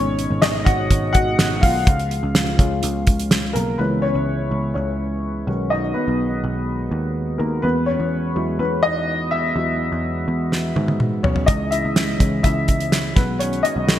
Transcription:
0.00 0.26 G#1 medium
0.00 1.85 B2 medium
0.00 1.85 D#3 medium
0.00 1.58 G#3 medium
0.00 1.85 G#3 medium
0.00 1.59 B3 medium
0.00 0.40 C#4 medium
0.00 0.42 D#4 medium
0.00 1.83 D#4 medium
0.00 0.44 C#5 loud
0.19 closed hi-hat medium
0.30 0.64 G#1 medium
0.42 0.65 D#4 medium
0.42 0.67 D#5 loud
0.42 snare loud
0.42 closed hi-hat medium
0.65 0.89 G#1 medium
0.65 1.11 F#4 medium
0.65 1.11 F#5 loud
0.65 kick loud
0.65 closed hi-hat medium
0.91 1.35 G#1 loud
0.91 kick medium
0.91 closed hi-hat medium
1.13 1.59 F#4 medium
1.13 1.63 F#5 loud
1.13 kick loud
1.13 closed hi-hat medium
1.39 1.61 G#1 medium
1.39 snare medium
1.39 closed hi-hat medium
1.61 1.85 B1 medium
1.61 2.58 F4 medium
1.61 3.50 F5 medium
1.61 kick medium
1.61 open hi-hat medium
1.87 2.21 C#2 loud
1.87 3.78 C#3 medium
1.87 3.78 F3 medium
1.87 3.77 G#3 medium
1.87 3.77 F4 medium
1.87 kick loud
1.87 closed hi-hat loud
1.99 closed hi-hat soft
2.11 closed hi-hat medium
2.23 2.57 C#2 medium
2.35 snare loud
2.35 closed hi-hat medium
2.59 2.81 C#2 medium
2.59 3.75 G#3 soft
2.59 3.75 C#4 soft
2.59 3.76 F4 medium
2.59 kick loud
2.59 closed hi-hat medium
2.83 3.52 C#2 loud
2.83 closed hi-hat medium
3.07 kick medium
3.07 closed hi-hat medium
3.19 closed hi-hat medium
3.31 snare loud
3.31 closed hi-hat medium
3.53 3.78 B1 medium
3.53 3.78 A#3 medium
3.53 3.77 A#4 medium
3.53 closed hi-hat medium
3.78 4.13 C#2 medium
3.78 5.46 C#3 medium
3.78 4.11 E3 soft
3.78 5.46 E3 soft
3.78 13.99 G#3 medium
3.78 4.12 G#3 soft
3.78 4.02 B3 medium
3.78 4.03 C#4 medium
3.78 5.46 E4 medium
3.78 4.03 B4 medium
4.02 4.72 C#4 medium
4.02 4.73 C#5 medium
4.15 4.49 C#2 medium
4.51 4.74 C#2 medium
4.74 5.44 C#2 medium
4.74 5.47 C#4 medium
4.74 5.74 C#5 medium
5.47 5.92 B1 medium
5.47 5.79 D#3 soft
5.47 7.62 D#3 medium
5.47 5.80 G#3 soft
5.47 11.45 B3 soft
5.47 5.80 C#4 medium
5.47 11.45 F#4 medium
5.70 5.94 D#4 medium
5.70 5.96 D#5 medium
5.94 7.36 B3 medium
5.94 7.43 B4 medium
6.08 6.41 B1 medium
6.44 6.88 B1 medium
6.91 7.36 D#2 medium
7.38 7.62 D#2 medium
7.38 7.63 A#3 medium
7.38 7.64 A#4 medium
7.62 7.97 E2 medium
7.62 11.44 E3 medium
7.62 7.87 B3 medium
7.62 7.88 B4 medium
7.86 8.56 C#4 medium
7.86 8.61 C#5 medium
8.00 8.33 E2 medium
8.35 8.58 E2 medium
8.35 9.04 F#3 soft
8.35 9.04 G#3 soft
8.35 9.05 E4 medium
8.59 9.52 E2 medium
8.59 8.83 B3 medium
8.59 8.84 B4 medium
8.83 9.29 D#4 medium
8.83 9.33 D#5 loud
9.31 9.56 E4 medium
9.31 11.30 E5 loud
9.56 9.90 E2 medium
9.56 9.88 F#3 soft
9.56 9.89 G#3 soft
9.56 9.89 E4 medium
9.92 10.26 E2 medium
10.28 10.73 E2 medium
10.52 snare soft
10.76 11.21 G#2 medium
10.76 high tom medium
10.88 high tom medium
11.00 mid tom medium
11.23 11.46 B1 medium
11.23 11.47 C#4 medium
11.23 11.49 C#5 medium
11.23 floor tom medium
11.36 floor tom medium
11.46 11.82 C#2 medium
11.46 13.14 C#3 medium
11.46 13.14 E3 medium
11.46 11.71 D#4 medium
11.46 13.14 E4 medium
11.46 11.72 D#5 medium
11.46 kick loud
11.46 closed hi-hat medium
11.71 12.41 E4 medium
11.71 12.42 E5 medium
11.71 closed hi-hat medium
11.85 12.18 C#2 medium
11.96 snare medium
11.96 closed hi-hat medium
12.19 12.43 C#2 medium
12.19 12.52 E3 soft
12.19 12.52 G#3 soft
12.19 12.52 C#4 soft
12.19 kick medium
12.19 closed hi-hat medium
12.43 13.13 C#2 medium
12.43 13.13 E4 medium
12.43 13.12 E5 medium
12.43 kick medium
12.43 closed hi-hat medium
12.68 kick medium
12.68 closed hi-hat medium
12.80 closed hi-hat medium
12.92 snare medium
12.92 closed hi-hat medium
13.15 13.61 B1 medium
13.15 13.99 D#3 medium
13.15 13.99 B3 soft
13.15 13.40 B3 medium
13.15 13.99 F#4 medium
13.15 13.41 B4 medium
13.15 kick medium
13.15 snare soft
13.15 closed hi-hat medium
13.39 13.63 C#4 medium
13.39 13.65 C#5 medium
13.39 closed hi-hat medium
13.53 closed hi-hat soft
13.63 13.99 D#4 medium
13.63 13.99 D#5 medium
13.63 closed hi-hat medium
13.76 13.99 B1 medium
13.87 13.99 D#3 medium
13.87 13.99 G#3 soft
13.87 13.99 C#4 medium
13.87 snare loud
13.87 closed hi-hat medium

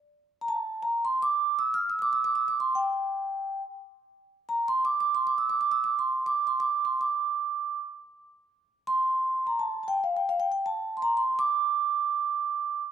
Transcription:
0.41 0.48 A#5 medium
0.48 0.84 A5 medium
0.83 1.04 A#5 medium
1.05 1.21 C6 medium
1.22 1.60 D6 medium
1.59 1.75 E6 medium
1.74 1.89 F6 medium
1.90 1.98 E6 medium
1.99 2.14 D6 medium
1.99 2.02 E6 medium
2.13 2.25 E6 medium
2.24 2.36 D6 medium
2.35 2.48 E6 medium
2.48 2.61 D6 medium
2.60 2.75 C6 medium
2.75 3.61 G5 medium
4.49 4.68 A#5 medium
4.68 4.84 C6 medium
4.85 4.99 D6 medium
5.00 5.15 D6 medium
5.15 5.27 C6 medium
5.27 5.39 D6 medium
5.38 5.50 E6 medium
5.50 5.60 D6 medium
5.61 5.73 D6 medium
5.71 5.85 E6 medium
5.84 5.99 D6 medium
5.99 6.28 C6 medium
6.26 6.49 D6 medium
6.47 6.61 C6 medium
6.60 6.85 D6 medium
6.85 7.01 C6 medium
7.01 7.77 D6 medium
8.87 9.49 C6 medium
9.47 9.60 A#5 medium
9.59 9.82 A5 medium
9.83 9.87 A5 soft
9.88 10.04 G5 medium
10.04 10.18 F5 medium
10.17 10.29 G5 medium
10.29 10.40 F5 medium
10.40 10.50 G5 medium
10.52 10.65 G5 medium
10.66 10.99 A5 medium
10.97 11.01 C6 medium
11.02 11.19 A#5 medium
11.17 11.39 C6 medium
11.39 12.81 D6 medium

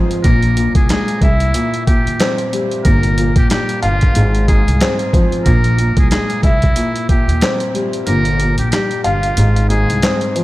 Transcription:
0.00 0.27 G#2 medium
0.00 0.24 F3 medium
0.00 0.24 C4 medium
0.11 closed hi-hat medium
0.24 0.70 A#1 loud
0.24 0.55 A#2 medium
0.24 0.72 A#4 loud
0.24 kick loud
0.24 closed hi-hat medium
0.43 closed hi-hat medium
0.56 1.22 A#2 medium
0.56 closed hi-hat medium
0.75 0.88 C2 medium
0.75 0.88 G#4 medium
0.75 kick loud
0.75 closed hi-hat medium
0.89 1.22 G#3 medium
0.89 1.20 G#4 medium
0.89 snare loud
0.89 clap medium
0.89 closed hi-hat medium
1.08 closed hi-hat soft
1.21 1.51 C2 loud
1.21 1.83 E4 medium
1.21 2.85 E5 medium
1.21 kick medium
1.21 closed hi-hat medium
1.40 closed hi-hat medium
1.54 1.86 A#2 medium
1.54 closed hi-hat loud
1.74 closed hi-hat medium
1.86 2.84 A#2 medium
1.86 2.35 G4 medium
1.86 kick medium
1.86 closed hi-hat medium
2.06 2.19 D#2 medium
2.06 closed hi-hat medium
2.20 2.85 C4 medium
2.20 snare loud
2.20 clap loud
2.20 closed hi-hat medium
2.38 closed hi-hat medium
2.52 2.85 G3 medium
2.52 closed hi-hat medium
2.71 closed hi-hat medium
2.84 3.31 G1 loud
2.84 3.17 A#2 medium
2.84 3.33 A#4 loud
2.84 kick loud
2.84 closed hi-hat medium
3.03 closed hi-hat medium
3.18 4.16 A#2 medium
3.18 closed hi-hat medium
3.36 3.49 A#1 medium
3.36 3.50 G4 medium
3.36 kick medium
3.36 closed hi-hat medium
3.50 4.16 G3 medium
3.50 3.80 G4 medium
3.50 snare loud
3.50 clap medium
3.50 closed hi-hat medium
3.69 closed hi-hat soft
3.82 4.12 G1 medium
3.82 4.44 F4 medium
3.82 4.15 F5 loud
3.82 closed hi-hat medium
4.01 kick medium
4.01 closed hi-hat medium
4.15 4.61 G#1 loud
4.15 4.46 G#2 medium
4.15 closed hi-hat loud
4.35 closed hi-hat medium
4.48 5.46 G#2 medium
4.48 4.96 G#4 medium
4.48 kick medium
4.48 closed hi-hat medium
4.67 4.79 C2 medium
4.67 closed hi-hat medium
4.81 5.46 C4 medium
4.81 snare loud
4.81 clap loud
4.81 closed hi-hat medium
4.99 closed hi-hat medium
5.13 5.46 F3 medium
5.13 kick loud
5.13 closed hi-hat medium
5.32 closed hi-hat medium
5.45 5.92 A#1 loud
5.45 5.77 A#2 medium
5.45 5.94 A#4 loud
5.45 kick loud
5.45 closed hi-hat medium
5.64 closed hi-hat medium
5.78 6.44 A#2 medium
5.78 closed hi-hat medium
5.97 6.09 C2 medium
5.97 6.10 G#4 medium
5.97 kick loud
5.97 closed hi-hat medium
6.10 6.44 G#3 medium
6.10 6.40 G#4 medium
6.10 snare loud
6.10 clap medium
6.10 closed hi-hat medium
6.30 closed hi-hat soft
6.43 6.73 C2 medium
6.43 7.05 E4 medium
6.43 8.07 E5 medium
6.43 kick loud
6.43 closed hi-hat medium
6.62 kick medium
6.62 closed hi-hat medium
6.76 7.08 A#2 medium
6.76 closed hi-hat loud
6.96 closed hi-hat medium
7.09 8.05 A#2 medium
7.09 7.57 G4 medium
7.09 kick medium
7.09 closed hi-hat medium
7.28 7.40 D#2 medium
7.28 closed hi-hat medium
7.41 8.07 C4 medium
7.41 snare loud
7.41 clap loud
7.41 closed hi-hat medium
7.60 closed hi-hat medium
7.74 8.07 G3 medium
7.74 closed hi-hat medium
7.93 closed hi-hat medium
8.07 8.53 G1 loud
8.07 8.39 A#2 medium
8.07 8.55 A#4 loud
8.07 closed hi-hat medium
8.25 closed hi-hat medium
8.40 9.38 A#2 medium
8.40 closed hi-hat medium
8.58 8.71 A#1 medium
8.58 8.70 G4 medium
8.58 closed hi-hat medium
8.71 9.37 G3 medium
8.71 9.01 G4 medium
8.71 snare loud
8.71 clap medium
8.71 closed hi-hat medium
8.91 closed hi-hat soft
9.04 9.34 G1 medium
9.04 9.66 F4 medium
9.04 9.37 F5 loud
9.04 closed hi-hat medium
9.23 closed hi-hat medium
9.37 9.83 G#1 loud
9.37 9.68 G#2 medium
9.37 closed hi-hat loud
9.56 closed hi-hat medium
9.69 10.44 G#2 medium
9.69 10.18 G#4 medium
9.69 closed hi-hat medium
9.89 10.01 C2 medium
9.89 closed hi-hat medium
10.02 10.44 C4 medium
10.02 snare loud
10.02 clap loud
10.02 closed hi-hat medium
10.21 closed hi-hat medium
10.36 10.44 F3 medium
10.36 closed hi-hat medium

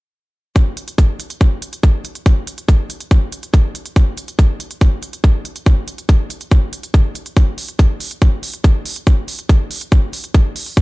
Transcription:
0.56 kick loud
0.56 closed hi-hat medium
0.77 closed hi-hat medium
0.88 closed hi-hat medium
0.98 kick loud
0.98 closed hi-hat medium
1.20 closed hi-hat medium
1.30 closed hi-hat medium
1.41 kick loud
1.41 closed hi-hat medium
1.62 closed hi-hat loud
1.73 closed hi-hat medium
1.83 kick loud
1.83 closed hi-hat medium
2.05 closed hi-hat medium
2.15 closed hi-hat medium
2.26 kick loud
2.26 closed hi-hat medium
2.47 closed hi-hat medium
2.58 closed hi-hat medium
2.69 kick loud
2.69 closed hi-hat medium
2.90 closed hi-hat medium
3.00 closed hi-hat medium
3.11 kick loud
3.11 closed hi-hat medium
3.32 closed hi-hat medium
3.43 closed hi-hat medium
3.54 kick loud
3.54 closed hi-hat medium
3.75 closed hi-hat medium
3.86 closed hi-hat medium
3.96 kick loud
3.96 closed hi-hat medium
4.17 closed hi-hat medium
4.28 closed hi-hat medium
4.39 kick loud
4.39 closed hi-hat medium
4.60 closed hi-hat medium
4.71 closed hi-hat medium
4.81 kick loud
4.81 closed hi-hat medium
5.03 closed hi-hat medium
5.13 closed hi-hat medium
5.24 kick loud
5.24 closed hi-hat medium
5.45 closed hi-hat medium
5.56 closed hi-hat medium
5.66 kick loud
5.66 closed hi-hat medium
5.88 closed hi-hat medium
5.98 closed hi-hat medium
6.09 kick loud
6.09 closed hi-hat medium
6.30 closed hi-hat medium
6.41 closed hi-hat medium
6.51 kick loud
6.51 closed hi-hat medium
6.73 closed hi-hat medium
6.83 closed hi-hat medium
6.94 kick loud
6.94 closed hi-hat medium
7.15 closed hi-hat medium
7.26 closed hi-hat medium
7.37 kick loud
7.37 closed hi-hat medium
7.58 open hi-hat loud
7.69 closed hi-hat medium
7.79 kick loud
7.79 closed hi-hat medium
8.00 open hi-hat loud
8.11 closed hi-hat medium
8.22 kick loud
8.22 closed hi-hat medium
8.43 open hi-hat loud
8.54 closed hi-hat medium
8.64 kick loud
8.64 closed hi-hat medium
8.86 open hi-hat loud
8.96 closed hi-hat medium
9.07 kick loud
9.07 closed hi-hat medium
9.28 open hi-hat loud
9.39 closed hi-hat medium
9.49 kick loud
9.49 closed hi-hat medium
9.71 open hi-hat loud
9.81 closed hi-hat medium
9.92 kick loud
9.92 closed hi-hat medium
10.13 open hi-hat loud
10.24 closed hi-hat medium
10.34 kick loud
10.34 closed hi-hat medium
10.56 open hi-hat loud
10.66 open hi-hat medium
10.77 kick loud
10.77 closed hi-hat medium

